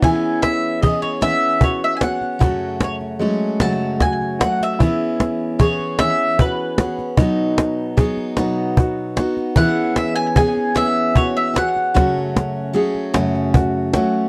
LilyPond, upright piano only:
\new Staff \with { instrumentName = "Upright piano" } { \time 6/8 \key e \major \tempo 4. = 50 e'4 gis'4 fis'8 fis'8 | fis'4 gis4 fis'8 fis'8 | e'4 gis'4 fis'8 fis'8 | dis'4 gis'4 fis'8 fis'8 |
e'4 gis'4 fis'8 fis'8 | fis'4 gis'4 fis'8 fis'8 | }